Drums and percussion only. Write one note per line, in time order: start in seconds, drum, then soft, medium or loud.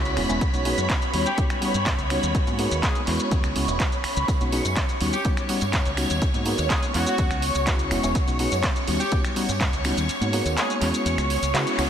0.05 closed hi-hat soft
0.05 shaker soft
0.17 finger snap medium
0.17 open hi-hat loud
0.30 closed hi-hat soft
0.30 shaker medium
0.41 kick loud
0.41 closed hi-hat medium
0.41 shaker medium
0.54 closed hi-hat soft
0.54 shaker soft
0.65 open hi-hat loud
0.78 closed hi-hat soft
0.78 shaker medium
0.90 kick loud
0.90 clap loud
0.90 closed hi-hat medium
0.90 shaker medium
1.02 closed hi-hat soft
1.02 shaker soft
1.14 open hi-hat loud
1.26 closed hi-hat soft
1.26 shaker medium
1.38 kick loud
1.38 closed hi-hat medium
1.38 shaker medium
1.50 finger snap medium
1.50 closed hi-hat soft
1.50 shaker soft
1.62 open hi-hat loud
1.74 closed hi-hat soft
1.74 shaker medium
1.86 kick loud
1.86 clap loud
1.86 closed hi-hat medium
1.86 shaker medium
1.99 closed hi-hat soft
1.99 shaker soft
2.10 finger snap medium
2.10 open hi-hat loud
2.23 closed hi-hat soft
2.23 shaker medium
2.35 kick loud
2.35 closed hi-hat medium
2.35 shaker medium
2.47 closed hi-hat soft
2.47 shaker soft
2.59 open hi-hat loud
2.71 closed hi-hat soft
2.71 shaker medium
2.83 kick loud
2.83 clap loud
2.83 closed hi-hat medium
2.83 shaker medium
2.95 closed hi-hat soft
2.95 shaker soft
3.07 clap soft
3.07 open hi-hat loud
3.20 closed hi-hat soft
3.20 shaker medium
3.31 kick loud
3.31 closed hi-hat medium
3.31 shaker medium
3.44 finger snap medium
3.44 closed hi-hat soft
3.44 shaker soft
3.56 open hi-hat loud
3.68 closed hi-hat soft
3.68 shaker medium
3.80 kick loud
3.80 clap loud
3.80 closed hi-hat medium
3.80 shaker medium
3.92 closed hi-hat soft
3.92 shaker soft
4.04 finger snap medium
4.04 open hi-hat loud
4.17 closed hi-hat soft
4.17 shaker medium
4.28 kick loud
4.28 closed hi-hat medium
4.28 tambourine soft
4.28 shaker medium
4.41 closed hi-hat soft
4.41 shaker soft
4.52 open hi-hat loud
4.52 tambourine medium
4.65 closed hi-hat soft
4.65 tambourine medium
4.65 shaker medium
4.76 kick loud
4.76 clap loud
4.76 closed hi-hat medium
4.76 shaker medium
4.89 closed hi-hat soft
4.89 shaker soft
5.01 open hi-hat loud
5.01 tambourine medium
5.13 closed hi-hat soft
5.13 tambourine medium
5.13 shaker medium
5.25 kick loud
5.25 closed hi-hat medium
5.25 shaker medium
5.37 finger snap medium
5.37 closed hi-hat soft
5.37 shaker soft
5.49 open hi-hat loud
5.49 tambourine loud
5.61 closed hi-hat soft
5.61 tambourine medium
5.61 shaker medium
5.73 kick loud
5.73 clap loud
5.73 closed hi-hat medium
5.73 shaker medium
5.85 closed hi-hat soft
5.85 shaker soft
5.97 finger snap medium
5.97 open hi-hat loud
5.97 tambourine medium
6.10 closed hi-hat soft
6.10 tambourine medium
6.10 shaker medium
6.22 kick loud
6.22 closed hi-hat medium
6.22 shaker medium
6.34 closed hi-hat soft
6.34 shaker soft
6.45 open hi-hat loud
6.45 tambourine medium
6.58 closed hi-hat soft
6.58 tambourine medium
6.58 shaker medium
6.70 kick loud
6.70 clap loud
6.70 closed hi-hat medium
6.70 shaker medium
6.83 closed hi-hat soft
6.83 shaker soft
6.94 clap soft
6.94 open hi-hat loud
6.94 tambourine medium
7.06 closed hi-hat soft
7.06 tambourine soft
7.06 shaker medium
7.18 kick loud
7.18 closed hi-hat medium
7.18 tambourine soft
7.18 shaker medium
7.31 finger snap medium
7.31 closed hi-hat soft
7.31 shaker soft
7.42 open hi-hat loud
7.42 tambourine medium
7.55 closed hi-hat soft
7.55 tambourine soft
7.55 shaker medium
7.67 kick loud
7.67 clap loud
7.67 closed hi-hat medium
7.67 shaker medium
7.79 closed hi-hat soft
7.79 shaker soft
7.91 finger snap medium
7.91 open hi-hat loud
7.91 tambourine loud
8.03 closed hi-hat soft
8.03 tambourine medium
8.03 shaker medium
8.15 kick loud
8.15 closed hi-hat medium
8.15 tambourine soft
8.15 shaker medium
8.28 closed hi-hat soft
8.28 shaker soft
8.39 open hi-hat loud
8.39 tambourine medium
8.52 closed hi-hat soft
8.52 tambourine medium
8.52 shaker medium
8.63 kick loud
8.63 clap loud
8.63 closed hi-hat medium
8.63 shaker medium
8.76 closed hi-hat soft
8.76 shaker soft
8.88 open hi-hat loud
8.88 tambourine medium
9.00 closed hi-hat soft
9.00 tambourine medium
9.00 shaker medium
9.12 kick loud
9.12 closed hi-hat medium
9.12 shaker medium
9.25 finger snap medium
9.25 closed hi-hat soft
9.25 shaker soft
9.36 open hi-hat loud
9.36 tambourine medium
9.48 closed hi-hat soft
9.48 tambourine medium
9.48 shaker medium
9.61 kick loud
9.61 clap loud
9.61 closed hi-hat medium
9.61 shaker medium
9.73 closed hi-hat soft
9.73 shaker soft
9.84 finger snap medium
9.84 open hi-hat loud
9.84 tambourine medium
9.97 closed hi-hat soft
9.97 tambourine medium
9.97 shaker medium
10.09 closed hi-hat medium
10.09 tambourine soft
10.09 shaker medium
10.22 closed hi-hat soft
10.22 shaker soft
10.33 open hi-hat loud
10.33 tambourine medium
10.46 closed hi-hat soft
10.46 tambourine medium
10.46 shaker medium
10.57 clap loud
10.57 closed hi-hat medium
10.57 tambourine soft
10.57 shaker medium
10.70 closed hi-hat soft
10.70 shaker soft
10.81 clap soft
10.81 open hi-hat loud
10.81 tambourine medium
10.94 closed hi-hat soft
10.94 tambourine soft
10.94 shaker medium
11.06 closed hi-hat medium
11.06 tambourine soft
11.06 shaker medium
11.18 finger snap medium
11.18 closed hi-hat soft
11.18 shaker soft
11.30 open hi-hat loud
11.30 tambourine medium
11.42 closed hi-hat soft
11.42 tambourine medium
11.42 shaker medium
11.55 clap loud
11.55 closed hi-hat medium
11.55 tambourine soft
11.55 shaker medium
11.67 closed hi-hat soft
11.67 shaker soft
11.79 finger snap medium
11.79 open hi-hat loud
11.79 tambourine loud